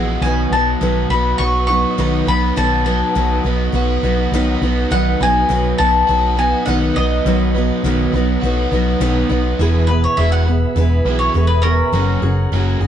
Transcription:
Already playing: picked electric bass A#1, overdriven electric guitar G#3 B3 F#4, steel-string acoustic guitar B3 F#4 G#4, tonewheel organ G#4 F#5 E6
0.21 picked electric bass B1, overdriven electric guitar B2, steel-string acoustic guitar B2 D#3 F#3 B3 D#4, tonewheel organ B4 D#6, mandolin G#5
0.26 steel-string acoustic guitar B4
0.51 picked electric bass B1, overdriven electric guitar F#3, steel-string acoustic guitar B3 D#4 B4, mandolin A5
0.56 steel-string acoustic guitar F#3
0.81 picked electric bass B1, steel-string acoustic guitar B2 D#3 F#3 B3 D#4 B4, overdriven electric guitar F#3
1.10 picked electric bass B1, overdriven electric guitar B3, steel-string acoustic guitar B3 D#4 B4, mandolin B5
1.14 steel-string acoustic guitar F#3
1.38 picked electric bass B1, steel-string acoustic guitar F#3 B3 D#4, overdriven electric guitar F#4, mandolin C#6
1.42 steel-string acoustic guitar B4
1.67 overdriven electric guitar B3, steel-string acoustic guitar B3 D#4 B4, mandolin C#6
1.72 steel-string acoustic guitar F#3
1.98 picked electric bass B1, steel-string acoustic guitar B2 D#3 F#3 B3 D#4 B4, overdriven electric guitar D#4
2.26 picked electric bass B1, steel-string acoustic guitar F#3 B3 D#4 B4, overdriven electric guitar B3, mandolin B5
2.56 picked electric bass B1, steel-string acoustic guitar B2 D#3 F#3 B3 D#4 B4, overdriven electric guitar B2, mandolin A5
2.84 steel-string acoustic guitar F#3 B3 D#4 B4, overdriven electric guitar F#3, mandolin A5
3.15 picked electric bass B1, steel-string acoustic guitar B2 D#3 F#3 B3 D#4 B4, overdriven electric guitar F#3
3.44 picked electric bass B1, steel-string acoustic guitar F#3 B3 D#4 B4, overdriven electric guitar B3
3.72 picked electric bass B1, steel-string acoustic guitar F#3 B3 D#4 B4, overdriven electric guitar F#4
4.03 picked electric bass B1, steel-string acoustic guitar F#3 B3 D#4 B4, overdriven electric guitar B3
4.32 picked electric bass B1, steel-string acoustic guitar B2 D#3 F#3 B3 D#4 B4, overdriven electric guitar D#4
4.61 picked electric bass B1, steel-string acoustic guitar F#3 B3 D#4 B4, overdriven electric guitar B3
4.91 picked electric bass B1, steel-string acoustic guitar B2 D#3 F#3 B3 D#4 B4, overdriven electric guitar B2, mandolin F#5
5.21 picked electric bass B1, overdriven electric guitar F#3, steel-string acoustic guitar F#3 B3 D#4 B4, mandolin G#5
5.49 picked electric bass B1, steel-string acoustic guitar B2 D#3 F#3 B3 D#4 B4, overdriven electric guitar F#3
5.78 picked electric bass B1, steel-string acoustic guitar F#3 B3 D#4 B4, overdriven electric guitar B3, mandolin A5
6.08 picked electric bass B1, steel-string acoustic guitar F#3 B3 D#4 B4, overdriven electric guitar F#4
6.37 steel-string acoustic guitar F#3 B3 D#4 B4, overdriven electric guitar B3, mandolin G#5
6.66 picked electric bass B1, steel-string acoustic guitar B2 D#3 F#3 B3 D#4 B4, overdriven electric guitar D#4, mandolin F#5
6.95 picked electric bass B1, overdriven electric guitar B3, steel-string acoustic guitar B3 D#4 B4, mandolin D#5
6.99 steel-string acoustic guitar F#3
7.25 picked electric bass B1, overdriven electric guitar B2, steel-string acoustic guitar B2 D#3 F#3 B3 D#4 B4
7.54 overdriven electric guitar F#3, steel-string acoustic guitar F#3 B3 D#4 B4
7.84 picked electric bass B1, steel-string acoustic guitar B2 D#3 F#3 B3 D#4 B4, overdriven electric guitar F#3
8.12 picked electric bass B1, overdriven electric guitar B3, steel-string acoustic guitar D#4 B4
8.16 steel-string acoustic guitar F#3 B3
8.42 picked electric bass B1, steel-string acoustic guitar F#3 B3 D#4, overdriven electric guitar F#4
8.46 steel-string acoustic guitar B4
8.71 picked electric bass B1, steel-string acoustic guitar F#3 B3 D#4 B4, overdriven electric guitar B3
9.00 picked electric bass B1, steel-string acoustic guitar B2 D#3 F#3 B3 D#4 B4, overdriven electric guitar D#4
9.29 picked electric bass B1, steel-string acoustic guitar F#3 B3 D#4 B4, overdriven electric guitar B3
9.59 picked electric bass E1, overdriven electric guitar E2 B2 E3, steel-string acoustic guitar E3 G#3 B3 G#4 B4, tonewheel organ G#4 E5 B5
9.87 overdriven electric guitar E2 B2, steel-string acoustic guitar G#4 B4, mandolin B4
9.91 steel-string acoustic guitar B3
10.04 mandolin C#5
10.17 picked electric bass E1, overdriven electric guitar E2 B2 E3, steel-string acoustic guitar G#3 B3 G#4 B4, mandolin E5
10.32 mandolin F#5
10.46 overdriven electric guitar E2 B2, steel-string acoustic guitar B3 G#4 B4
10.76 picked electric bass E1, overdriven electric guitar E2 B2, steel-string acoustic guitar E3 G#3 B3 G#4 B4
11.05 picked electric bass B1, overdriven electric guitar E2 B2 E3, steel-string acoustic guitar B3 G#4 B4
11.19 mandolin C#5
11.34 picked electric bass E1, overdriven electric guitar E2 B2, steel-string acoustic guitar G#3 B3 G#4 B4
11.47 mandolin B4
11.62 overdriven electric guitar E2 B2, mandolin C#4 A#4, steel-string acoustic guitar G#4 B4
11.66 steel-string acoustic guitar B3
11.92 picked electric bass F#1, overdriven electric guitar F#2 C#3 F#3, steel-string acoustic guitar F#3 A#3 C#4 F#4 G#4, tonewheel organ F#5 A#5
12.22 picked electric bass F#1, overdriven electric guitar F#2 C#3, steel-string acoustic guitar C#4 F#4 G#4
12.52 picked electric bass F#1, overdriven electric guitar F#2 C#3 F#3, steel-string acoustic guitar A#3 C#4 F#4 G#4
12.80 picked electric bass F#1, overdriven electric guitar F#2 C#3, steel-string acoustic guitar C#4 F#4 G#4

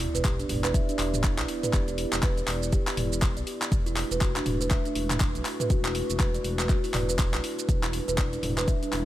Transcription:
Already playing: analog synth pad B3 E4 G4 D5, sub drop
0.00 kalimba E4, open hi-hat
0.15 analog synth bass E1, kalimba B4, closed hi-hat, shaker
0.25 kalimba G4, kick, clap, closed hi-hat, shaker
0.40 kalimba D4, closed hi-hat, shaker
0.49 analog synth bass E1, kalimba E4, mid tom, open hi-hat
0.64 kalimba B4, clap, shaker
0.74 kalimba E5, kick, closed hi-hat, shaker
0.89 kalimba D4, closed hi-hat, shaker
0.99 analog synth bass E1, kalimba E4, clap, open hi-hat
1.14 mid tom, shaker
1.24 kick, clap, closed hi-hat, shaker
1.38 analog synth bass B1, clap, closed hi-hat, shaker
1.48 kalimba E4, open hi-hat
1.63 kalimba B4, closed hi-hat, mid tom, shaker
1.73 analog synth bass E1, kalimba G4, kick, clap, closed hi-hat, shaker
1.88 kalimba E4, closed hi-hat, shaker
1.98 open hi-hat
2.13 analog synth bass E1, clap, closed hi-hat, shaker
2.23 kalimba B4, kick, clap, closed hi-hat, shaker
2.37 kalimba D5, closed hi-hat, shaker
2.48 analog synth bass E1, clap, open hi-hat
2.63 shaker
2.72 kalimba G4, kick, closed hi-hat, shaker
2.87 kalimba E4, clap, open hi-hat, shaker
2.97 analog synth bass E1, kalimba E4, mid tom, open hi-hat
3.13 shaker
3.22 kick, clap, closed hi-hat, shaker
3.37 analog synth bass B1, kalimba D5, closed hi-hat, shaker
3.47 kalimba G4, open hi-hat
3.62 clap, closed hi-hat, shaker
3.71 analog synth bass E1, analog synth pad A3 D4 F#4 B4, kick, closed hi-hat, shaker
3.86 kalimba E4, closed hi-hat, shaker
3.96 kalimba E4, clap, open hi-hat
4.11 analog synth bass E1, kalimba B4, closed hi-hat, shaker
4.21 kick, clap, closed hi-hat, shaker
4.36 kalimba D4, clap, closed hi-hat, shaker
4.46 analog synth bass E1, kalimba E4, mid tom, open hi-hat
4.61 kalimba B4, shaker
4.71 kalimba E5, kick, clap, closed hi-hat, shaker
4.85 kalimba D4, closed hi-hat, shaker
4.95 analog synth bass E1, kalimba E4, open hi-hat
5.10 clap, mid tom, shaker
5.20 kick, clap, closed hi-hat, shaker
5.35 analog synth bass B1, closed hi-hat, shaker
5.45 kalimba E4, clap, open hi-hat
5.60 kalimba B4, closed hi-hat, mid tom, shaker
5.70 analog synth bass E1, kalimba F#4, kick, closed hi-hat, shaker
5.85 kalimba E4, clap, closed hi-hat, shaker
5.95 open hi-hat
6.10 analog synth bass E1, closed hi-hat, shaker
6.20 kalimba B4, kick, clap, closed hi-hat, shaker
6.34 kalimba D5, closed hi-hat, shaker
6.44 analog synth bass E1, open hi-hat
6.59 clap, shaker
6.69 kalimba F#4, kick, clap, closed hi-hat, shaker
6.84 kalimba E4, open hi-hat, shaker
6.94 analog synth bass E1, kalimba D5, clap, mid tom, open hi-hat
7.09 kalimba B4, shaker
7.19 kick, clap, closed hi-hat, shaker
7.34 analog synth bass B1, kalimba E4, clap, closed hi-hat, shaker
7.44 kalimba E4, open hi-hat
7.59 closed hi-hat, shaker
7.69 analog synth bass E1, analog synth pad G3 E4, kick, closed hi-hat, shaker
7.83 kalimba E4, clap, closed hi-hat, shaker
7.93 kalimba E4, open hi-hat
8.08 analog synth bass E1, kalimba B4, closed hi-hat, shaker
8.18 kick, clap, closed hi-hat, shaker
8.33 kalimba D4, closed hi-hat, shaker
8.43 analog synth bass E1, kalimba E4, mid tom, open hi-hat
8.58 kalimba B4, clap, shaker
8.68 kalimba E5, kick, closed hi-hat, shaker
8.83 kalimba D4, closed hi-hat, shaker
8.92 analog synth bass E1, kalimba E4, clap, open hi-hat

